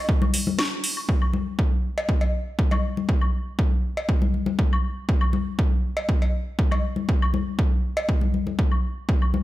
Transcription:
0.09 kick
0.22 high conga, high woodblock
0.34 open hi-hat, high conga
0.47 high conga
0.59 snare, high woodblock
0.84 open hi-hat
0.97 high woodblock
1.09 kick
1.22 high woodblock
1.33 high conga
1.59 kick
1.98 cowbell
2.09 kick
2.21 cowbell
2.59 kick
2.71 cowbell, high conga, high woodblock
2.97 high conga
3.09 kick
3.21 high woodblock
3.59 kick
3.97 cowbell
4.09 kick
4.22 high conga
4.34 high conga
4.46 high conga
4.59 kick
4.73 high woodblock
5.09 kick
5.21 high woodblock
5.33 high conga
5.59 kick
5.97 cowbell
6.09 kick
6.22 cowbell
6.59 kick
6.71 cowbell, high conga, high woodblock
6.96 high conga
7.09 kick
7.22 high woodblock
7.34 high conga
7.59 kick
7.97 cowbell
8.09 kick
8.21 high conga
8.34 high conga
8.47 high conga
8.59 kick
8.72 high woodblock
9.09 kick
9.22 high woodblock
9.34 high conga

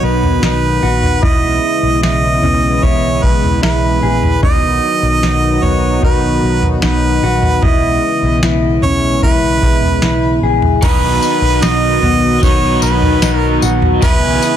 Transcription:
Already playing: D#3 F#3 B3 D#4 F#4
0.03 B1 B4
0.23 floor tom
0.42 B1 D#4 B4, snare
0.83 A#1 F#4
1.03 floor tom
1.23 B1 C#3 E3 G#3 B3 E4 D#5, kick, floor tom
1.83 B1
2.02 B1 E4 D#5, snare
2.42 B1 C#4, floor tom
2.83 B1 E4 C#5, kick, floor tom
3.23 B1 B4, kick
3.44 floor tom
3.62 B1 E4 B4, snare
4.03 A#1 G#4
4.23 floor tom
4.43 B1 D#3 F#3 B3 D#4 F#4 D#5, kick, floor tom
5.03 B1
5.23 B1 D#4, snare
5.63 B1 B3 C#5, floor tom
6.03 B1 D#4 B4, kick, floor tom
6.43 B1
6.63 floor tom
6.82 B1 D#4 B4, snare
7.23 A#1 F#4
7.43 floor tom
7.62 B1 C#3 E3 G#3 B3 E4 D#5, kick, floor tom
8.23 B1
8.42 B1 E4, snare
8.82 B1 C#4 C#5, floor tom
9.22 B1 E4 B4, kick, floor tom
9.63 B1, kick
9.82 floor tom
10.02 B1 E4, snare
10.42 A#1 G#4
10.62 floor tom
10.81 B1 B2 D#3 F#3 B3 D#4 F#4 B4, kick, floor tom, crash, tambourine
10.85 F#4
11.21 D#4 F#4, tambourine
11.27 B3
11.42 B1
11.62 B1 D#4 D#5, snare, tambourine
12.02 B1 B3, floor tom
12.39 B1 F#3 D#4, kick
12.43 B3 C#5, floor tom, tambourine
12.48 D#4 F#4
12.82 B1 B4, tambourine
13.02 floor tom
13.22 B1 D#4, snare, tambourine
13.35 A#4
13.62 A#1 F#4, tambourine
13.82 floor tom
14.01 B1 B2 C#3 E3 G#3 B3 C#4 E4 B4, kick, floor tom, tambourine
14.05 G#4
14.41 C#4 G#4, tambourine
14.46 B3

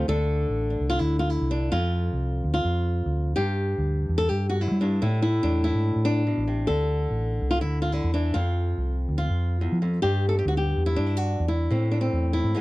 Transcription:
0.08 D2 D3 A3 D4 A4
0.49 A1
0.70 D4
0.80 C2
0.90 F4
0.99 D2 E4
1.19 F4
1.30 E4
1.41 C2
1.51 D4
1.72 F2 F4
2.13 C2
2.44 D2
2.54 F4
2.65 F2
3.06 D2
3.36 G2 G4
3.78 D2
4.09 E2
4.18 A4
4.29 G2 G4
4.49 F#4
4.61 F#2 E4
4.71 G3
4.81 G2 D4
5.02 A2 E4
5.22 E4
5.43 E2 D4
5.64 E4
5.75 G#2
5.96 A2
6.05 D4
6.27 B2
6.37 A1
6.47 C3
6.67 D2 D3 A4
7.10 A1
7.41 C2
7.51 F4
7.61 D2 E4
7.82 F4
7.92 D3 E4
8.04 E2
8.14 E3 D4
8.34 F2 F4
8.78 C2
9.09 D2
9.18 F4
9.30 F2
9.61 E2
9.72 F3
9.82 F2
10.02 G2 G4
10.29 A4
10.39 G4
10.45 D2 F#4
10.57 G4
10.77 E2
10.86 E4
10.96 G2 D4
11.06 E4
11.17 F#4
11.40 E2
11.48 E4
11.71 A2 C4
11.92 D4
12.01 C4
12.13 E2
12.33 E4
12.44 G#2
12.55 E2 E3 G#3 B3

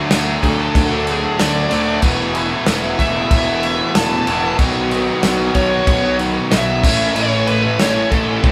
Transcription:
Already playing: D3 F#3 A3 D4
0.10 D2 D3 F#3 A3 D4, snare, crash
0.25 F#3 A3 D4
0.43 D2 D3 F#3 A3 D4 A4, kick, crash
0.57 A3 D4
0.62 F#3
0.75 D2, kick, crash
0.90 F#3 A3 D4
1.07 D3 F#3 A3 D4 G#4, crash
1.38 D2 D3 F#3 A3 D4 D5, snare, crash
1.70 D2 D3 F#3 A3 D4, crash
1.74 D4
1.87 F#3 A3 D4
2.02 E1 E2 B2 E3 A3 B3, kick, crash
2.06 E4
2.34 E3 A3 B3 E4, crash
2.49 A3 B3 E4
2.65 E1 E3 A3 B3 E4, snare, crash
2.81 A3 B3 E4
2.98 E1 E3 A3 B3 E4 E5, kick, crash
3.14 A3 B3 E4
3.31 E1, kick, crash
3.47 A3 B3 E4
3.63 E3 A3 B3 E4, crash
3.95 E1 E3 A3 B3 E4 A5, snare, crash
4.27 E1 E2 B2 E3 A3 B3 E4, crash
4.43 A3 B3 E4
4.59 B1 B2 D#3 F#3 B3 F#4, kick, crash
4.91 D#3 F#3 B3 F#4, crash
5.06 B3 F#4
5.10 F#3
5.23 B1 B2 D#3 F#3 B3 F#4, snare, crash
5.39 F#3 B3 F#4
5.55 B1 D#3 F#3 B3 F#4 C#5, kick, crash
5.71 F#3 B3 F#4
5.87 B1, kick, crash
6.04 F#3 B3 F#4
6.19 D#3 F#3 B3 F#4, crash
6.51 B1 B2 D#3 F#3 B3 E5, snare, crash
6.56 F#4
6.83 A1 A2 E3 A3 C#4, kick, crash
6.88 E4
7.00 A3 C#4 E4
7.15 A1 A2 E3 A3 C#4 E4 C#5, crash
7.47 E3 A3 C#4 B4, crash
7.52 E4
7.64 A3 C#4 E4
7.79 A1 A2 E3 A3 C#4 C#5, snare, crash
7.83 E4
7.96 A3 C#4 E4
8.11 A1 E3 A3 C#4 A4, kick, crash
8.15 E4
8.28 A3 C#4 E4
8.44 A1 A2 E3 A3 C#4, kick, high tom
8.48 E4

